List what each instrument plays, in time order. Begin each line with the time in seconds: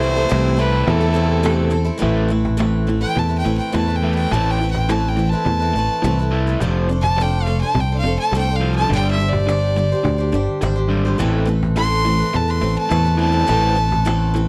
Already playing: fingered electric bass C2, overdriven electric guitar C3 E3 A3 C4 E4, fiddle C5
0.02 steel-string acoustic guitar A3 C4 E4 A4
0.16 steel-string acoustic guitar A3 C4 E4 A4
0.29 fingered electric bass C2, steel-string acoustic guitar C3 E3 A3 C4 E4 A4, cajon slap
0.56 steel-string acoustic guitar A3 C4 E4 A4, overdriven electric guitar A3 C4 E4
0.61 overdriven electric guitar C3 E3, fiddle B4
0.87 fingered electric bass E2, fiddle A4, cajon bass
1.01 steel-string acoustic guitar A3 C4 E4 A4
1.14 steel-string acoustic guitar A3 C4 E4 A4
1.43 steel-string acoustic guitar C3 E3 A3 C4 E4 A4, cajon slap
1.70 steel-string acoustic guitar A3 C4 E4 A4
1.84 steel-string acoustic guitar A3 C4 E4 A4
1.98 steel-string acoustic guitar A2 E3 A3 C4 E4 B4
2.02 fingered electric bass A1, overdriven electric guitar A2 E3 A3, cajon bass
2.28 overdriven electric guitar A2 E3, steel-string acoustic guitar A3 C4 E4 B4
2.45 cajon bass
2.57 steel-string acoustic guitar A2 E3 A3 C4 E4 B4, overdriven electric guitar A2 E3, cajon slap
2.87 overdriven electric guitar A2 E3, steel-string acoustic guitar A3 C4 E4 B4
3.01 steel-string acoustic guitar A3 C4 E4 B4, fiddle G5
3.15 fingered electric bass E2, overdriven electric guitar A2 E3, fiddle A5, cajon bass
3.29 steel-string acoustic guitar A3 C4 E4 B4
3.39 fiddle G5
3.44 fingered electric bass A1, overdriven electric guitar A2 E3, steel-string acoustic guitar A3 C4 E4 B4
3.58 fiddle G5
3.72 fingered electric bass E2, steel-string acoustic guitar A2 E3 A3 C4 E4 B4, overdriven electric guitar A2 E3, fiddle A5, cajon slap
3.88 steel-string acoustic guitar A3 C4 E4 B4
3.96 fiddle G5
4.03 overdriven electric guitar A2 E3 A3
4.15 steel-string acoustic guitar C4 E4 B4, fiddle G5
4.19 steel-string acoustic guitar A3
4.31 fingered electric bass A1, overdriven electric guitar A2 E3 A3, steel-string acoustic guitar A2 E3 A3 C4 E4 B4, fiddle A5, cajon bass
4.51 fiddle G5
4.61 overdriven electric guitar A2 E3, steel-string acoustic guitar A3 C4 E4 B4
4.71 fiddle G5, cajon bass
4.89 steel-string acoustic guitar A2 E3 A3 C4 E4 B4, overdriven electric guitar A2 E3, fiddle A5, cajon slap
5.09 fiddle G5
5.17 overdriven electric guitar A2 E3, steel-string acoustic guitar A3 C4 E4 B4
5.30 steel-string acoustic guitar C4 E4 B4, fiddle A5
5.35 steel-string acoustic guitar A3
5.45 fingered electric bass E2, overdriven electric guitar A2 E3, cajon bass
5.59 steel-string acoustic guitar A3 C4 E4 B4
5.74 fingered electric bass A1, overdriven electric guitar A2 E3, steel-string acoustic guitar A3 C4
5.78 steel-string acoustic guitar E4 B4
6.02 fingered electric bass C2, overdriven electric guitar A2 E3, steel-string acoustic guitar A2 E3 A3 C4 E4 B4, cajon slap
6.19 steel-string acoustic guitar A3 C4 E4 B4
6.31 overdriven electric guitar A2 E3 A3
6.47 steel-string acoustic guitar A3 C4 E4 B4
6.60 fingered electric bass F1, overdriven electric guitar F2 C3 F3, steel-string acoustic guitar F3 A3 D4 A4 C5, cajon bass
6.88 overdriven electric guitar F2 C3, steel-string acoustic guitar A3 D4 A4 C5
7.02 fiddle A5, cajon bass
7.17 overdriven electric guitar F2 C3, steel-string acoustic guitar F3 D4, cajon slap
7.21 steel-string acoustic guitar A3 A4 C5, fiddle G5
7.43 overdriven electric guitar F2, fiddle F5
7.47 overdriven electric guitar C3, steel-string acoustic guitar A3 D4 A4 C5
7.61 steel-string acoustic guitar D4 A4 C5, fiddle A5
7.75 fingered electric bass C2, overdriven electric guitar F2 C3, cajon bass
7.80 fiddle G5
7.92 steel-string acoustic guitar D4 A4 C5
7.99 fiddle F5
8.04 fingered electric bass F1, overdriven electric guitar F2 C3, steel-string acoustic guitar A3 D4 A4
8.08 steel-string acoustic guitar C5
8.19 fiddle A5
8.32 fingered electric bass C2, overdriven electric guitar F2 C3, steel-string acoustic guitar F3 A3 D4 A4, cajon slap
8.36 steel-string acoustic guitar C5, fiddle G5
8.50 steel-string acoustic guitar D4 A4 C5
8.56 fiddle F5
8.60 overdriven electric guitar F2 C3 F3
8.76 steel-string acoustic guitar C5, fiddle A5
8.80 steel-string acoustic guitar D4 A4
8.88 fingered electric bass G1, overdriven electric guitar G2 D3 G3, cajon bass
8.93 steel-string acoustic guitar G3 D4 G4 C5, fiddle G5
9.11 fiddle E5
9.17 overdriven electric guitar G2 D3, steel-string acoustic guitar G3 D4
9.22 steel-string acoustic guitar G4 C5
9.29 fiddle D5, cajon bass
9.47 overdriven electric guitar G2 D3, steel-string acoustic guitar G3 D4 G4 C5, cajon slap
9.76 overdriven electric guitar G2 D3, steel-string acoustic guitar G3 D4 G4 C5
9.92 steel-string acoustic guitar D4 G4 C5
10.04 fingered electric bass D2, overdriven electric guitar G2 D3, cajon bass
10.18 steel-string acoustic guitar D4 G4 C5
10.32 fingered electric bass G1, overdriven electric guitar G2 D3, steel-string acoustic guitar G3 D4 G4 C5
10.61 fingered electric bass G#1, overdriven electric guitar G2 D3, steel-string acoustic guitar G3 D4 G4 C5, cajon slap
10.76 steel-string acoustic guitar D4 G4 C5
10.89 overdriven electric guitar G2 D3 G3
11.05 steel-string acoustic guitar D4 G4 C5
11.18 fingered electric bass A1, steel-string acoustic guitar A2 E3 A3 C4 A4 B4, overdriven electric guitar A2 E3 C4, cajon bass
11.45 overdriven electric guitar A2 E3, steel-string acoustic guitar A3 C4 A4 B4
11.63 cajon bass
11.76 steel-string acoustic guitar A2 E3 A3 C4 A4 B4, overdriven electric guitar A2 E3, fiddle C6, cajon slap
12.05 overdriven electric guitar A2 E3, steel-string acoustic guitar A3 C4 A4 B4
12.19 steel-string acoustic guitar A3 C4 A4 B4
12.34 fingered electric bass E2, overdriven electric guitar A2 E3, fiddle A5, cajon bass
12.48 steel-string acoustic guitar A3 C4 A4 B4, fiddle C6
12.61 fingered electric bass A1, overdriven electric guitar A2 E3, steel-string acoustic guitar A3 C4 A4 B4
12.78 fiddle A5
12.89 fingered electric bass E2, overdriven electric guitar A2 E3, steel-string acoustic guitar A2 E3 A3 C4 A4 B4, cajon slap
13.04 steel-string acoustic guitar A3 C4 A4 B4
13.18 overdriven electric guitar A2 E3 C4, fiddle A5
13.32 steel-string acoustic guitar A3 C4 A4 B4
13.47 fingered electric bass A1, steel-string acoustic guitar A2 E3 A3 C4 A4 B4, overdriven electric guitar A2 E3 C4, cajon bass
13.75 overdriven electric guitar A2 E3, steel-string acoustic guitar A3 C4 A4 B4
13.92 cajon bass
14.05 steel-string acoustic guitar A2 E3 A3 C4 A4 B4, overdriven electric guitar A2 E3, cajon slap
14.34 overdriven electric guitar A2 E3, steel-string acoustic guitar A3 C4 A4 B4